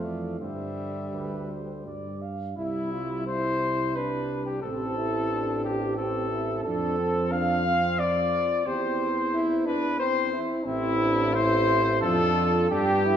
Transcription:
Already playing: F2 A3 F5
0.04 E3 D5
0.39 G2 D3 G3 C5 E5
1.13 D2 B4
1.50 C5
1.86 G2 D5
2.22 F5
2.56 C2 G3 E4
2.93 F4
3.27 G3 E4 C5
3.95 D4 B4
4.46 G4
4.62 A1 C4 A4
4.98 E4
5.32 D4
5.63 G4
5.97 C4 A4
6.31 E4
6.63 F2 C4 D4 A4
6.99 C4
7.32 C4 D4 F5
7.67 C4
7.98 F4 D5
8.66 E2 C4 G4 C5
9.34 E4
9.66 D4 B4
9.99 C4 C5
10.33 E4
10.64 A1 C4 E4
11.00 D4
11.34 C4 E4 C5
12.01 F2 D4 F4 A4
12.70 G2 B3 D4 G4
13.06 E4

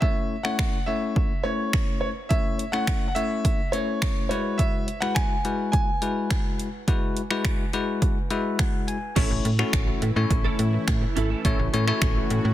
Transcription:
0.01 A3 C#4 E4 C#5 E5, kick
0.43 A3 C#4 E4 C#5 F#5, finger snap
0.59 finger snap, kick
0.86 A3 C#4 E4 C#5 E5
1.16 kick
1.43 A3 C#4 E4 C#5
1.73 finger snap, kick
2.01 C#5
2.29 A3 C#4 E4 C#5 E5, kick, closed hi-hat
2.59 closed hi-hat
2.72 A3 C#4 E4 C#5 F#5, finger snap
2.87 finger snap, kick, closed hi-hat
3.08 F#5
3.15 A3 C#4 E4 C#5 E5, closed hi-hat
3.45 kick, closed hi-hat
3.72 A3 C#4 E4 C#5, closed hi-hat
4.02 finger snap, kick, closed hi-hat
4.29 G#3 E4 F#4 B4 C#5, closed hi-hat
4.58 E5, kick, closed hi-hat
4.88 closed hi-hat
5.00 G#3 E4 F#4 B4 F#5, finger snap
5.15 G#5, finger snap, kick, closed hi-hat
5.45 G#3 E4 F#4 B4, closed hi-hat
5.72 G#5, kick, closed hi-hat
6.02 G#3 E4 F#4 B4, closed hi-hat
6.30 finger snap, kick, closed hi-hat
6.60 closed hi-hat
6.88 G#3 E4 F#4 B4, kick, closed hi-hat
7.17 closed hi-hat
7.30 G#3 E4 F#4 B4, finger snap
7.45 finger snap, kick, closed hi-hat
7.73 G#3 E4 F#4 B4, closed hi-hat
8.02 kick, closed hi-hat
8.30 G#3 E4 F#4 B4 E5, closed hi-hat
8.59 F#5, finger snap, kick, closed hi-hat
8.88 G#5, closed hi-hat
9.16 A1 E3 A3 C#4 E4 A4 C#5, kick, closed hi-hat, crash
9.30 A1, muted clean electric guitar stroke
9.45 A2, muted clean electric guitar stroke, closed hi-hat
9.59 A3 C#4 E4 F#4 A4, finger snap
9.73 A1, finger snap, kick, closed hi-hat
9.87 muted clean electric guitar stroke
10.02 A2, closed hi-hat
10.16 A2 A3 C#4 E4 C#5, muted clean electric guitar stroke
10.30 A1, muted clean electric guitar stroke, kick, closed hi-hat
10.44 C#4 E4 A4
10.59 A2, muted clean electric guitar stroke, closed hi-hat
10.73 muted clean electric guitar stroke
10.87 A2, finger snap, muted clean electric guitar stroke, kick, closed hi-hat
11.02 muted clean electric guitar stroke
11.16 G#1 C#4 E4 A4, closed hi-hat
11.30 C#4 E4 A4
11.44 A1 A3 C#4 E4 F#4 A4 C#5, kick, closed hi-hat
11.59 A1, muted clean electric guitar stroke
11.73 A2 A3 C#4 E4 C#5, muted clean electric guitar stroke, closed hi-hat
11.87 A3 C#4 E4 A4 C#5, finger snap
12.02 A1, finger snap, muted clean electric guitar stroke, kick, closed hi-hat
12.16 muted clean electric guitar stroke
12.30 A2, closed hi-hat
12.45 A2, muted clean electric guitar stroke

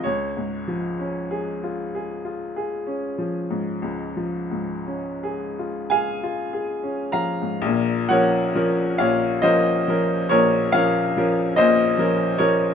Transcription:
0.04 C#2 C#5
0.37 G#2
0.68 F3
0.99 C#4
1.31 G#4
1.64 F4
1.95 G#4
2.25 F4
2.56 G#4
2.87 C#4
3.18 F3
3.50 G#2
3.82 C#2
4.17 F3
4.51 G#2
4.87 C#4
5.23 G#4
5.59 F4
5.90 G#4 F5 G#5
6.23 F4
6.53 G#4
6.83 C#4
7.12 F3 F5 A#5
7.42 G#2
7.62 A#1 A#2
8.09 F3 C#4 A#4 C#5 F#5
8.55 F3 C#4 A#4
8.98 A#1 A#2 C#5 F5
9.42 F3 C#4 A#4 C5 D#5
9.88 F3 C#4 A#4
10.29 A#1 A#2 A#4 C#5
10.72 F3 C#4 A#4 C#5 F5
11.17 F3 C#4 A#4
11.56 A#1 A#2 C5 D#5
11.98 F3 C#4 A#4
12.38 F3 C#4 A#4 C#5

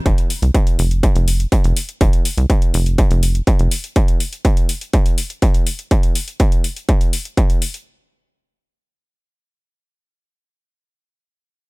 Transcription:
0.06 F1, kick, closed hi-hat
0.18 closed hi-hat
0.30 open hi-hat
0.42 C2, closed hi-hat
0.55 kick, closed hi-hat
0.67 closed hi-hat
0.79 F1, open hi-hat
0.91 closed hi-hat
1.03 kick, closed hi-hat
1.15 F1, closed hi-hat
1.28 open hi-hat
1.40 closed hi-hat
1.52 kick, closed hi-hat
1.64 F1, closed hi-hat
1.77 open hi-hat
1.89 closed hi-hat
2.01 F1, kick, closed hi-hat
2.13 closed hi-hat
2.25 open hi-hat
2.38 C2, closed hi-hat
2.50 kick, closed hi-hat
2.62 closed hi-hat
2.74 F1, open hi-hat
2.86 closed hi-hat
2.98 kick, closed hi-hat
3.11 F1, closed hi-hat
3.23 open hi-hat
3.35 closed hi-hat
3.47 kick, closed hi-hat
3.59 F1, closed hi-hat
3.71 open hi-hat
3.84 closed hi-hat
3.96 kick, closed hi-hat
4.08 closed hi-hat
4.20 open hi-hat
4.33 closed hi-hat
4.45 kick, closed hi-hat
4.57 closed hi-hat
4.69 open hi-hat
4.81 closed hi-hat
4.93 kick, closed hi-hat
5.06 closed hi-hat
5.18 open hi-hat
5.30 closed hi-hat
5.42 kick, closed hi-hat
5.54 closed hi-hat
5.67 open hi-hat
5.79 closed hi-hat
5.91 kick, closed hi-hat
6.03 closed hi-hat
6.15 open hi-hat
6.28 closed hi-hat
6.40 kick, closed hi-hat
6.52 closed hi-hat
6.64 open hi-hat
6.76 closed hi-hat
6.89 kick, closed hi-hat
7.01 closed hi-hat
7.13 open hi-hat
7.25 closed hi-hat
7.37 kick, closed hi-hat
7.50 closed hi-hat
7.62 open hi-hat
7.74 closed hi-hat

